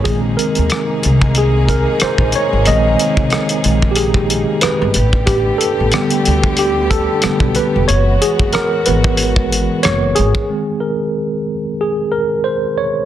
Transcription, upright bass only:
0.07 A#1
0.58 D#2
1.05 C2
2.02 muted upright bass stroke
2.19 A#1
2.53 G#1
2.68 A#1
3.18 C2
3.65 A#1
4.63 muted upright bass stroke
4.82 G1
4.96 A1
5.80 A1
6.27 D2
7.25 muted upright bass stroke
7.41 B1
7.76 E1
7.90 F#1
8.40 F#1
8.88 G#1
9.86 F#1
10.19 G#1

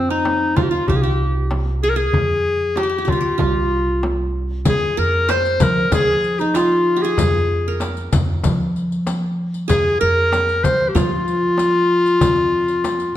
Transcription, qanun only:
Already playing: C4 D4 F4
0.10 D#4
0.56 F4
0.71 F4
0.89 G4
1.03 G4
1.83 G#4
1.96 G#4
2.77 G4
2.83 G4
2.89 G4
2.98 G4
3.05 G4
3.12 G4
3.21 G4
3.38 F4
4.65 G#4
4.97 A#4
5.28 C5
5.92 G#4
6.41 D#4
6.55 F4
6.96 G4
7.05 G#4
7.68 A#4
9.68 G#4
10.01 A#4
10.95 F4

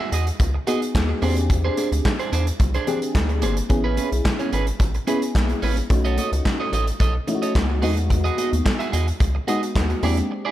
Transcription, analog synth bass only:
0.12 E2
0.40 C#2
0.95 D#2
1.22 E2
1.92 D2
2.32 E2
2.60 C2
3.15 D2
3.42 G1
3.70 A1
4.12 B1
4.53 G#1
4.80 A1
5.35 B1
5.62 A1
5.90 B1
6.32 C#2
6.72 A1
7.00 B1
7.55 C#2
7.83 E2
8.53 D#2
8.93 E2
9.20 C#2
9.75 D#2
10.03 E2

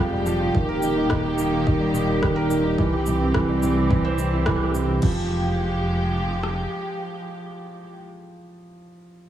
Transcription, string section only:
Already playing: F3 G4
0.52 D#3 A#3
2.78 E3 C4
5.02 F3 G#3 G4

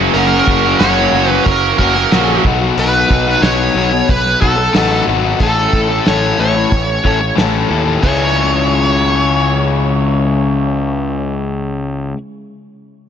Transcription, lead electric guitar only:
0.14 A#4
0.79 C#5
1.31 B4
1.44 A#4
1.78 A#4
2.79 B4
3.42 C#5
4.10 B4
4.41 A4
5.41 A4
6.08 C#5
6.40 C#5
8.03 C#5

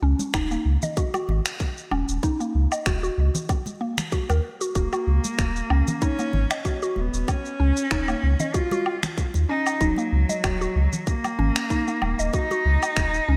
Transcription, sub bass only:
0.02 C#2
0.34 D#1
0.65 C#2
1.29 G#1
1.92 D#1
2.09 D#1
2.55 C#2
2.86 D#1
3.18 C#2
4.30 D#2
4.75 D#1
5.07 C#2
5.39 D#1
5.70 C#2
6.33 G#1
6.97 D#1
7.14 D#1
7.60 C#2
7.91 D#1
8.23 C#2
9.35 D#2
9.81 D#1
10.12 C#2
10.44 D#1
10.76 C#2
11.39 G#1
12.02 D#1
12.19 D#1
12.65 C#2
12.97 D#1
13.28 C#2

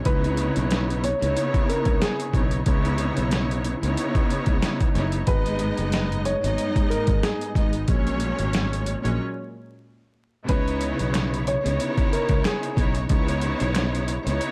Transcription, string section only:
0.04 C#3 B3 D#4 E4 C#5
1.20 C#3 B3 D#4 E4 C#5
2.32 C#3 B3 D#4 E4 C#5
2.65 C#3 B3 D#4 E4 C#5
3.82 C#3 B3 D#4 E4 C#5
4.95 C#3 B3 D#4 E4 C#5
5.27 G#2 G#3 B3 D#4 D#5
6.43 G#2 G#3 B3 D#4 D#5
7.55 G#2 G#3 B3 D#4 D#5
7.87 A#2 F#3 G#3 C#4 C#5
9.02 A#2 F#3 G#3 C#4 C#5
10.47 C#3 B3 D#4 E4 C#5
11.64 C#3 B3 D#4 E4 C#5
12.75 C#3 B3 D#4 E4 C#5
13.08 C#3 B3 D#4 E4 C#5
14.26 C#3 B3 D#4 E4 C#5

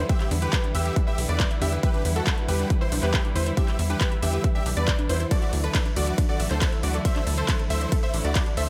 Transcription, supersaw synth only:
0.10 G4 E5
0.42 G4 B4
0.75 G4 E5
1.07 G4 E5
1.29 B4 D5
1.62 G4 E5
1.83 G4 B4
2.16 F#4 A4
2.49 G4 B4
2.81 E4 C5
3.03 G4 B4
3.36 E4 C5
3.57 G4 E5
3.90 G4 B4
4.23 G4 E5
4.55 G4 E5
4.77 B4 D5
5.09 E4 C5
5.31 F#4 D5
5.64 D4 B4
5.96 F#4 D5
6.29 F#4 D5
6.51 A4 C5
6.83 F#4 D5
7.05 C5 E5
7.38 A4 C5
7.70 C5 E5
8.03 C5 E5
8.25 F#4 D5
8.57 C5 E5

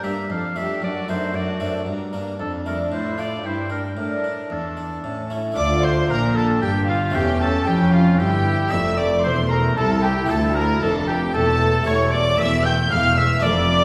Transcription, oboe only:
0.04 E5
0.31 F5
0.57 E5
0.84 D5
1.09 C5
1.35 D5
2.40 A4
2.67 A#4
2.93 C5
3.19 D5
3.46 C5
3.71 A#4
3.99 A#4
4.52 A4
5.58 D5
5.84 C5
6.10 A#4
6.36 A4
6.61 G4
6.89 F4
7.15 G4
7.42 A4
7.67 G4
7.94 F4
8.19 G4
8.71 E5
8.97 D5
9.23 C5
9.51 A#4
9.77 A4
10.03 G4
10.29 A4
10.56 A#4
10.82 A4
11.07 G4
11.34 A4
11.86 C#5
12.11 D5
12.38 E5
12.64 G5
12.91 F5
13.17 E5
13.43 D5

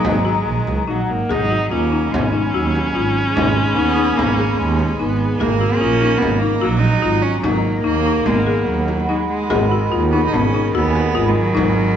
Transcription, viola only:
Already playing: G#3
0.88 F#3
1.10 A#3
1.31 D#4
1.72 C#4
5.01 B3
5.41 A#3
6.63 F#3
7.44 A#3
9.09 G#3
9.50 D#3

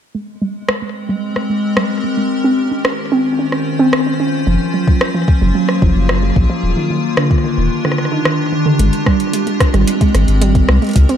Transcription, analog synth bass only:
4.47 F#1
5.42 F#1
5.82 F#1
5.96 F#1
6.36 A#1
6.63 D#1
7.58 D#1
8.79 G#1
9.74 G#1
10.14 G#1
10.28 G#1
10.69 C2
10.96 C#2

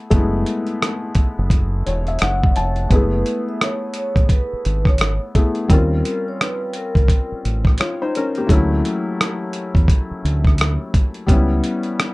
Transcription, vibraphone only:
2.92 B4
3.49 E5
3.63 C#5
3.98 C#5
4.32 B4
4.88 C#5
5.71 A#4
6.28 C#5
6.42 B4
6.77 A#4

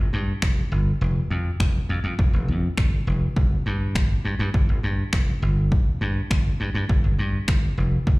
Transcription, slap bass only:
0.13 G2
0.42 F1
0.72 G1
1.01 F1
1.30 F2
1.60 F1
1.89 F2
2.04 F2
2.19 F1
2.33 F1
2.48 F2
2.78 G1
3.07 F1
3.36 G1
3.66 G2
3.95 G1
4.25 G2
4.39 G2
4.54 G1
4.69 G1
4.83 G2
5.13 F1
5.42 G1
6.01 G2
6.31 G1
6.60 G2
6.75 G2
6.90 G1
7.04 G1
7.19 G2
7.48 G1
7.77 F1
8.07 G1

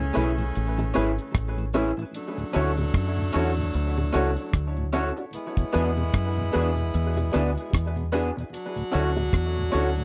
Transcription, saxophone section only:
Already playing: C#3 A3 C#4
2.14 F#3 A3 D4
5.33 G#3 B3 E4
8.53 F#3 D4 F#4

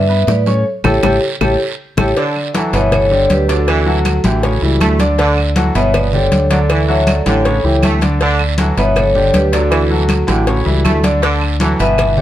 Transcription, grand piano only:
0.09 B3 B4 B5
0.47 C#4 C#5 C#6
0.84 E4 G4 A4
1.03 E4 G4 A4
1.41 E4 G4 A4
1.98 E4 G4 A4
2.17 D3 D4 D5
2.54 F#3 F#4 A4
2.73 B2 B3 B4
3.11 D3 D4 G4
3.49 D3 D4 D5
3.86 F#3 F#4 A4
4.24 E3 E4 G4
4.43 C#3 C#4 C#5
4.62 E3 G3 E4
5.00 D3 D4 D5
5.18 D3 D4 D5
5.56 F#3 F#4 A4
5.75 B2 B3 B4
6.13 D3 D4 G4
6.50 D3 D4 D5
6.88 F#3 F#4 A4
7.26 E3 E4 G4
7.45 C#3 C#4 C#5
7.64 E3 E4 G4
8.02 D3 D4 D5
8.21 D3 D4 D5
8.59 F#3 F#4 A4
8.77 B2 B3 B4
9.15 D3 D4 G4
9.52 D3 D4 D5
9.90 F#3 F#4 A4
10.28 E3 E4 G4
10.47 C#3 C#4 C#5
10.65 E3 G3 E4
11.04 D3 D4 D5
11.22 D3 D4 D5
11.60 F#3 F#4 A4
11.80 B2 B3 B4
12.17 D3 D4 G4

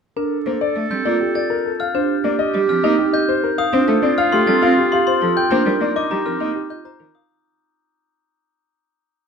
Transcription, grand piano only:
0.16 A#4
0.46 C5
0.61 D5
1.05 D5
1.20 G4
1.35 D5
1.50 A#4
1.65 A4
1.80 F5
1.95 C5
2.24 D5
2.39 D#5
2.84 D#5
2.99 G4
3.13 D#5
3.29 C5
3.44 A#4
3.58 F5
3.73 C5
3.88 A4
4.03 D5
4.18 F5
4.33 G4
4.48 A4
4.63 F5
4.78 G4
4.93 F5
5.07 C5
5.23 A4
5.37 G5
5.52 C5
5.67 A#4
5.81 D5
5.96 D#5
6.11 G4
6.26 A#4
6.41 D#5
6.55 G4
6.70 D#5
6.85 C5
7.00 A#4
7.15 F5

